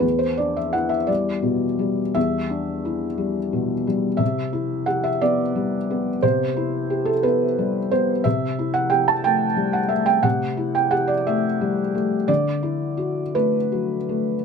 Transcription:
<<
  \new Staff \with { instrumentName = "Felt piano" } { \time 6/8 \key e \minor \tempo 4. = 59 b'16 c''16 d''16 e''16 fis''16 e''16 d''4. | e''2~ e''8 r8 | e''4 fis''16 e''16 d''4. | c''4~ c''16 a'16 b'4 c''8 |
e''8. fis''16 g''16 a''16 g''8. fis''16 e''16 g''16 | fis''8. g''16 fis''16 d''16 e''4 r8 | d''4. b'4. | }
  \new Staff \with { instrumentName = "Felt piano" } { \time 6/8 \key e \minor e,8 d'8 e'8 g8 b,8 g8 | e,8 d'8 e'8 g8 b,8 g8 | c8 e'8 g'8 b8 g8 b8 | c8 e'8 g'8 b8 g8 b8 |
c8 e'8 g'8 a8 g8 a8 | c8 e'8 g'8 a8 g8 a8 | d8 e'8 fis'8 a8 fis8 a8 | }
>>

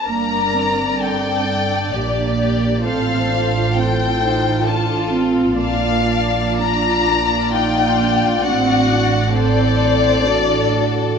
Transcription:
<<
  \new Staff \with { instrumentName = "Violin section" } { \time 3/4 \key g \minor \tempo 4 = 66 bes''4 g''4 d''4 | f''4 g''4 a''8 r8 | f''4 bes''4 g''4 | fis''4 d''2 | }
  \new Staff \with { instrumentName = "Violin section" } { \time 3/4 \key g \minor << { d''2. | c''4 c''4 a'4 | d''2.~ | d''4 c''4 a'4 | } \\ { bes'4 a'4 g'8 g'8 | a'4 a'4 f'4 | d'8 d'4. f'4 | fis'4 a'4 a'4 | } >> }
  \new Staff \with { instrumentName = "Viola section" } { \time 3/4 \key g \minor << { d'4 c'8 d'4. | f'2.~ | f'4 f'4 ees'8 d'8 | d'2 fis'4 | } \\ { bes8 c'8 d'4 bes4 | c'8 d'8 c'8 ees'8 d'8 c'8 | bes4 d'8 bes4. | c'8 d'8 c'8 c'8 d'4 | } >> }
  \new Staff \with { instrumentName = "Cello section" } { \clef bass \time 3/4 \key g \minor g,2 bes,4 | a,2. | bes,2. | a,2. | }
  \new Staff \with { instrumentName = "Double bass section" } { \clef bass \time 3/4 \key g \minor g,,2 bes,,4 | a,,2. | bes,,2. | a,,2. | }
>>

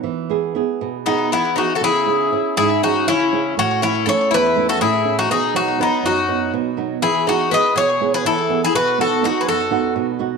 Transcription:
<<
  \new Staff \with { instrumentName = "Bouzouki" } { \time 7/8 \key e \major \tempo 4 = 121 r2 dis'8 e'8 fis'16. a'32 | gis'4. gis'8 fis'8 e'4 | fis'8 e'8 cis''8 b'8. a'16 gis'8. fis'16 | gis'8 fis'8 dis'8 fis'4 r4 |
gis'8 fis'8 dis''8 cis''8. b'16 a'8. gis'16 | b'8 a'8 fis'16. b'32 a'4 r4 | }
  \new Staff \with { instrumentName = "Bouzouki" } { \time 7/8 \key e \major r2 b8 b8 dis'16. fis'32 | e'4. e'8 dis'8 cis'4 | cis'8 cis'8 a'8 e'8. fis'16 e'8. dis'16 | dis'8 dis'8 b8 dis'4 r4 |
e'8 dis'8 b'8 gis'8. gis'16 e'8. e'16 | fis'8 fis'8 dis'16. gis'32 fis'4 r4 | }
  \new Staff \with { instrumentName = "Nylon-string guitar" } { \time 7/8 \key e \major e8 <b e' gis'>8 <b e' gis'>8 b,8 <b e' gis'>8 e8 <b e' gis'>8 | cis8 <cis' e' gis'>8 <cis' e' gis'>8 gis,8 <cis' e' gis'>8 cis8 <cis' e' gis'>8 | a,8 <a cis' e'>8 <a cis' e'>8 e,8 <a cis' e'>8 a,8 <a cis' e'>8 | b,8 <fis b dis'>8 <fis b dis'>8 fis,8 <fis b dis'>8 b,8 <fis b dis'>8 |
e8 <b e' gis'>8 <b e' gis'>8 b,8 <b e' gis'>8 e8 <b e' gis'>8 | b,8 <b dis' fis'>8 <b dis' fis'>8 fis,8 <b dis' fis'>8 b,8 <b dis' fis'>8 | }
>>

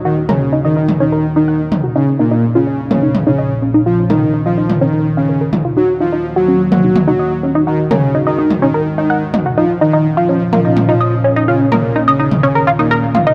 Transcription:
<<
  \new Staff \with { instrumentName = "Soft synth lead" } { \time 4/4 \key ees \minor \tempo 4 = 126 ees'16 r16 des'8 r16 ees'8 r16 ees'8 r16 ees'8 r8. | des'16 r16 bes8 r16 des'8 r16 des'8 r16 des'8 r8. | f'16 r16 ees'8 r16 f'8 r16 ees'8 r16 des'8 r8. | ges'16 r16 f'8 r16 ges'8 r16 ges'8 r16 ges'8 r8. |
ees'16 r16 des'8 r16 ees'8 r16 ees'8 r16 ees'8 r8. | f'16 r16 ees'8 r16 f'8 r16 f'8 r16 f'8 r8. | des'16 r16 bes8 r16 des'8 r16 des'8 r16 bes8 r8. | }
  \new Staff \with { instrumentName = "Synth arpeggio sound" } { \time 4/4 \key ees \minor ges'16 r16 bes'16 r16 ees'16 ees''16 ees'16 r16 des'16 bes'16 r16 ees'16 ges''16 r16 ees'16 ges'16 | ees'16 r16 ees'16 ees'16 r16 f'16 des'16 r16 bes16 ees'16 r16 ees'16 ees''16 r16 des'16 ees'16 | f'16 r16 bes'16 r16 ees'16 ees''16 ees'16 r16 des'16 bes'16 r16 f''16 bes'16 bes'16 f'16 f'16 | ees'16 r16 ees'16 ees'16 r16 ges'16 des'16 r16 bes16 ees'16 r16 ees'16 ees''16 r16 des'16 ees'16 |
ges'16 r16 bes'16 r16 ees'16 ees''16 ees'16 r16 des'16 bes'16 r16 ees'16 ges''16 r16 ees'16 ges'16 | ees'16 r16 ees'16 ees'16 r16 f'16 des'16 r16 bes16 ees'16 r16 ees'16 ees''16 r16 des'16 ees'16 | f'16 r16 bes'16 r16 ees'16 ees''16 ees'16 r16 des'16 bes'16 f'16 ees'16 bes'16 r16 f'16 ees'16 | }
  \new Staff \with { instrumentName = "Analog synth pad" } { \clef bass \time 4/4 \key ees \minor << { <ees ges'>1 | <bes, des'>1~ | <bes, des'>1 | ges'1~ |
ges'1 | <bes, des'>1~ | <bes, des'>1 | } \\ { bes1 | f1 | ees1 | bes1 |
aes1 | f1 | ees1 | } >> }
  \new Staff \with { instrumentName = "Supersaw synth" } { \clef bass \time 4/4 \key ees \minor ees16 r16 des8 r16 ees8 r16 ees8 r16 ees8 r8. | des16 r16 bes,8 r16 des8 r16 des8 r16 des8 r8. | f16 r16 ees8 r16 f8 r16 ees8 r16 des8 r8. | ges16 r16 f8 r16 ges8 r16 ges8 r16 ges8 r8. |
ees16 r16 des8 r16 ees8 r16 ees8 r16 ees8 r8. | f16 r16 ees8 r16 f8 r16 f8 r16 f8 r8. | des16 r16 bes,8 r16 des8 r16 des8 r16 bes,8 r8. | }
  \new DrumStaff \with { instrumentName = "Drums" } \drummode { \time 4/4 r8 toml8 r8. toml16 r4 r8 toml8 | r4 r4 toml8 toml8 r4 | r8 toml8 r8. toml16 r4 r8 toml8 | r4 r4 toml8 toml8 r4 |
r8 toml8 r8. toml16 r4 r8 toml8 | r4 r4 toml8 toml8 r4 | r8 toml8 r8. toml16 r4 r8 toml8 | }
>>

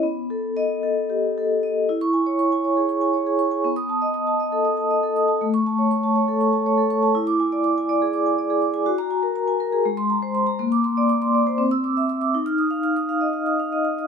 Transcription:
\new Staff \with { instrumentName = "Vibraphone" } { \time 7/8 \key b \major \tempo 4 = 120 << { r4 dis''8. r4. r16 | r16 cis'''8 r2 r8. | r16 dis'''8 r2 r8. | r16 cis'''8 r2 r8. |
r16 d'''8 r2 r8. | \key ees \dorian r16 bes''8 r4. c'''8 r8. | r16 d'''8 r4. e'''8 r8. | r16 f'''8 r2 r8. | } \\ { b8 a'8. r16 a'8 g'8 a'8 dis''8 | e'8 gis''16 cis''16 cis'''16 gis''16 cis''16 gis'16 cis'''16 gis''16 cis''16 gis'16 cis'''16 gis''16 | b8 a''16 dis''16 dis'''16 a''16 dis''16 a'16 dis'''16 a''16 dis''16 a'16 dis'''16 a''16 | a8 a''16 cis''16 cis'''16 a''16 cis''16 a'16 cis'''16 a''16 cis''16 a'16 cis'''16 a''16 |
e'8 gis''16 d''16 d'''16 gis''16 d''16 gis'16 d'''16 gis''16 d''16 gis'16 d'''16 gis''16 | ges'8 aes''16 bes'16 bes''16 aes''16 bes'16 aes'16 aes8 bes''16 c''16 c'''16 bes''16 | bes8 c'''16 d''16 d'''16 c'''16 d''16 c''16 c'8 d'''16 e''16 e'''16 d'''16 | ees'8 ees'''16 f''16 f'''16 ees'''16 f''16 ees''16 f'''16 ees'''16 f''16 ees''16 f'''16 ees'''16 | } >> }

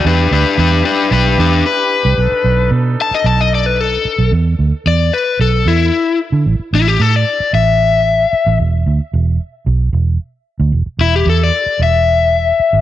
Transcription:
<<
  \new Staff \with { instrumentName = "Overdriven electric guitar" } { \time 4/4 \key e \minor \tempo 4 = 112 <d' b'>8 <d' b'>8 <d' b'>8 <d' b'>8 <d' b'>8 <d' b'>8 b'4~ | b'4 r8 a''16 dis''16 a''16 dis''16 d''16 b'16 a'4 | r4 d''8 b'8 a'8 e'4 r8 | r8 e'16 g'16 a'16 d''8. e''2 |
r1 | r8 e'16 g'16 a'16 d''8. e''2 | }
  \new Staff \with { instrumentName = "Horn section" } { \time 4/4 \key e \minor << { <e' g'>1 | <dis' a'>1 | r1 | r1 |
r1 | r1 | } \\ { d'1~ | d'1 | r1 | r1 |
r1 | r1 | } >> }
  \new Staff \with { instrumentName = "Fingered electric bass" } { \clef bass \time 4/4 \key e \minor e,8 d,16 r16 e,8 r8 b,,8 e,8 r8. c,16 | b,,16 r16 b,,8 b,8 r8 b,,4. r16 b,,16 | e,8 d,16 r16 e,8 r8 b,,8 e,8 r8. d16 | a,,16 r16 a,,8 a,8 r8 a,,4. r16 a,,16 |
e,,8 d,16 r16 e,,8 r8 b,,8 e,,8 r8. d,16 | e,,16 r16 e,,8 e,8 r8 e,,4. r16 gis,,16 | }
>>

